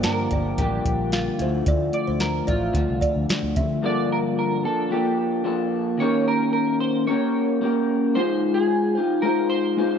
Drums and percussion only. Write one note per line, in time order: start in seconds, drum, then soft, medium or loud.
0.03 snare medium
0.03 closed hi-hat medium
0.31 kick medium
0.31 closed hi-hat medium
0.58 kick medium
0.58 closed hi-hat medium
0.85 kick medium
0.85 closed hi-hat medium
1.12 snare loud
1.12 closed hi-hat medium
1.39 closed hi-hat medium
1.66 kick loud
1.66 closed hi-hat medium
1.93 closed hi-hat medium
2.20 snare loud
2.20 closed hi-hat medium
2.48 kick medium
2.48 closed hi-hat medium
2.74 kick medium
2.74 closed hi-hat medium
3.02 kick medium
3.02 closed hi-hat medium
3.29 snare loud
3.29 closed hi-hat medium
3.56 kick medium
3.56 closed hi-hat medium